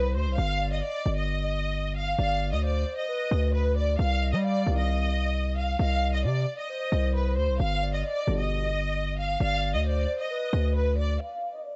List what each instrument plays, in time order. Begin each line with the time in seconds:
Already playing: 808-style bass C2, violin section B4, soft synth lead C5
0.15 808-style bass D2, violin section C5
0.27 808-style bass C2
0.38 808-style bass G1, violin section F5
0.61 soft synth lead D5
0.72 violin section D#5
0.83 violin section D5, soft synth lead D#5
1.06 808-style bass G1
1.17 violin section D#5
1.96 violin section F5
2.18 808-style bass G1, soft synth lead D5, violin section F5
2.52 808-style bass D2, violin section D#5
2.64 soft synth lead C5, violin section D5
2.97 violin section D#5
3.09 soft synth lead B4
3.31 808-style bass D2
3.54 violin section B4
3.76 violin section D5
3.99 808-style bass C2, violin section F5
4.22 soft synth lead D#5
4.33 808-style bass G3, violin section D#5
4.44 violin section D5, soft synth lead F5
4.67 808-style bass C2, brass ensemble C3 D#3 G3
4.78 violin section D#5
5.57 violin section F5
5.79 808-style bass C2, soft synth lead D#5, violin section F5
6.13 violin section D#5
6.24 808-style bass C3, violin section D5, soft synth lead D5
6.58 violin section D#5
6.70 soft synth lead C5
6.92 808-style bass C2
7.15 violin section B4
7.37 808-style bass D2, violin section C5
7.49 808-style bass C2
7.60 808-style bass G1, violin section F5
7.82 soft synth lead D5
7.94 violin section D#5
8.05 violin section D5, soft synth lead D#5
8.27 808-style bass G1, brass ensemble B2 D3 G3
8.39 violin section D#5
9.18 violin section F5
9.40 808-style bass G1, soft synth lead D5, violin section F5
9.74 808-style bass D2, violin section D#5
9.85 soft synth lead C5, violin section D5
10.19 violin section D#5
10.31 soft synth lead B4
10.53 808-style bass D2
10.76 violin section B4
10.98 violin section D5
11.21 violin section F5
11.54 violin section D#5
11.66 violin section D5